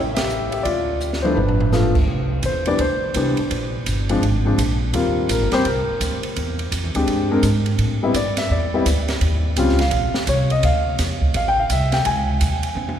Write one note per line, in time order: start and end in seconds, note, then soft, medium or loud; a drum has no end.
0.00 0.62 A1 medium
0.14 0.50 G4 medium
0.14 0.50 E5 medium
0.14 snare medium
0.14 ride medium
0.29 hi-hat pedal medium
0.51 0.65 G4 medium
0.51 0.64 E5 medium
0.51 ride soft
0.63 1.33 D2 medium
0.63 1.20 F4 medium
0.63 1.25 D5 medium
0.63 kick soft
0.63 ride medium
1.00 hi-hat pedal medium
1.13 snare soft
1.22 1.36 F3 medium
1.22 1.36 A3 medium
1.22 1.36 B3 medium
1.22 1.36 D4 medium
1.22 1.36 E4 medium
1.22 1.37 C5 medium
1.22 mid tom medium
1.35 2.04 G1 medium
1.35 1.92 D4 medium
1.35 1.90 B4 medium
1.35 floor tom medium
1.49 floor tom medium
1.61 floor tom medium
1.72 1.93 F3 medium
1.72 1.93 A3 medium
1.72 1.93 B3 medium
1.72 1.93 F4 medium
1.72 snare soft
1.72 hi-hat pedal medium
1.95 kick medium
1.95 crash medium
2.07 2.42 C2 medium
2.07 kick soft
2.43 2.78 E2 medium
2.43 2.67 C5 medium
2.43 kick soft
2.43 hi-hat pedal soft
2.43 ride medium
2.66 2.79 E3 medium
2.66 2.79 G3 medium
2.66 2.79 B3 medium
2.66 2.79 D4 medium
2.66 2.80 D5 medium
2.66 ride soft
2.79 3.14 D2 medium
2.79 3.35 C5 medium
2.79 kick soft
2.79 ride medium
3.14 3.36 C2 medium
3.14 3.36 E3 medium
3.14 3.36 G3 medium
3.14 3.36 B3 soft
3.14 3.36 D4 medium
3.14 kick soft
3.14 hi-hat pedal medium
3.14 ride medium
3.37 muted upright bass stroke soft
3.37 ride soft
3.51 3.85 A#1 medium
3.51 kick soft
3.51 ride medium
3.86 4.21 G1 medium
3.86 kick soft
3.86 hi-hat pedal medium
3.86 ride medium
4.09 4.21 F3 medium
4.09 4.21 G#3 medium
4.09 4.22 C4 medium
4.09 4.22 D4 medium
4.09 ride soft
4.22 4.57 G#1 medium
4.22 kick soft
4.22 ride soft
4.45 4.57 F3 medium
4.45 4.57 G#3 medium
4.45 4.57 C4 medium
4.45 4.58 D4 medium
4.58 4.93 A#1 medium
4.58 kick soft
4.58 hi-hat pedal medium
4.58 ride medium
4.93 5.28 D#2 medium
4.93 5.48 G3 medium
4.93 5.48 A#3 medium
4.93 5.48 C4 medium
4.93 5.48 F4 medium
4.93 kick soft
4.93 ride medium
5.29 5.40 A#1 medium
5.29 5.52 A#4 medium
5.29 kick soft
5.29 hi-hat pedal medium
5.29 ride medium
5.40 5.52 G1 medium
5.52 5.64 D#1 medium
5.52 5.64 G3 medium
5.52 5.64 A#3 medium
5.52 5.64 C4 medium
5.52 5.64 G4 medium
5.52 5.66 C5 medium
5.52 snare medium
5.52 ride soft
5.65 5.86 C2 medium
5.65 6.20 A#4 medium
5.65 kick soft
5.65 ride medium
5.87 muted upright bass stroke soft
6.00 6.35 D2 medium
6.00 kick soft
6.00 hi-hat pedal medium
6.00 ride medium
6.23 ride soft
6.36 6.71 E2 medium
6.36 kick soft
6.36 ride medium
6.59 ride soft
6.71 6.84 F2 medium
6.71 kick soft
6.71 hi-hat pedal medium
6.71 ride medium
6.84 6.95 E2 medium
6.95 7.07 D2 medium
6.95 7.28 G#3 medium
6.95 7.28 C4 medium
6.95 7.29 D4 medium
6.95 7.29 G4 medium
6.95 ride soft
7.07 7.42 G2 medium
7.07 kick soft
7.07 ride medium
7.31 7.42 G#3 medium
7.31 7.43 C4 medium
7.31 7.43 D4 medium
7.31 7.43 A#4 medium
7.43 7.78 G#2 medium
7.43 kick soft
7.43 hi-hat pedal medium
7.43 ride medium
7.66 ride soft
7.78 8.13 A2 medium
7.78 kick soft
7.78 ride medium
8.03 8.14 G3 medium
8.03 8.14 B3 medium
8.03 8.14 C4 medium
8.03 8.14 E4 medium
8.14 8.49 G2 medium
8.14 8.37 D5 medium
8.14 kick soft
8.14 hi-hat pedal medium
8.14 ride medium
8.37 8.50 E5 medium
8.37 snare soft
8.37 ride medium
8.50 8.85 E2 medium
8.50 9.05 D5 medium
8.50 kick soft
8.74 8.85 G3 medium
8.74 8.85 B3 medium
8.74 8.86 C4 medium
8.74 8.86 E4 medium
8.86 9.20 D2 medium
8.86 kick soft
8.86 hi-hat pedal medium
8.86 ride medium
9.08 snare medium
9.08 ride soft
9.21 9.56 D#2 medium
9.21 kick soft
9.21 ride medium
9.56 9.91 C#2 medium
9.56 9.78 G3 medium
9.56 9.78 C4 medium
9.56 9.78 C#4 medium
9.56 9.78 F4 medium
9.56 kick soft
9.56 hi-hat pedal soft
9.56 ride medium
9.69 snare soft
9.79 10.25 F5 medium
9.79 snare soft
9.79 ride soft
9.91 10.13 A#1 medium
9.91 kick soft
9.91 ride medium
10.14 muted upright bass stroke soft
10.14 snare medium
10.27 10.62 C2 medium
10.27 10.50 C#5 medium
10.27 kick soft
10.27 hi-hat pedal medium
10.27 ride medium
10.50 10.64 D#5 medium
10.50 ride soft
10.63 10.98 D2 medium
10.63 10.97 F5 medium
10.63 kick soft
10.63 ride medium
10.98 11.34 E2 medium
10.98 kick soft
10.98 snare soft
10.98 hi-hat pedal medium
10.98 ride medium
11.21 kick medium
11.34 11.69 A1 medium
11.34 11.47 F5 medium
11.34 kick soft
11.34 ride medium
11.48 11.59 G5 loud
11.60 11.71 F5 medium
11.70 12.05 C2 medium
11.70 11.93 E5 medium
11.70 kick soft
11.70 hi-hat pedal medium
11.70 ride medium
11.92 12.06 G5 medium
11.92 snare medium
11.92 ride soft
12.05 12.40 C#2 medium
12.05 12.73 G#5 medium
12.05 kick soft
12.05 ride medium
12.41 12.75 D#2 medium
12.41 kick soft
12.41 hi-hat pedal medium
12.41 ride medium
12.63 ride soft
12.75 12.99 F2 medium
12.75 high tom soft
12.89 high tom medium